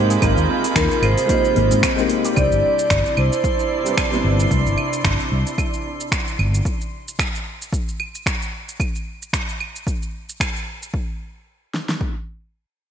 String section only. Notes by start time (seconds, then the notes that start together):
Already playing: C3 G#3 A#3 G4
0.22 F4
2.36 C3 D4 E4 D5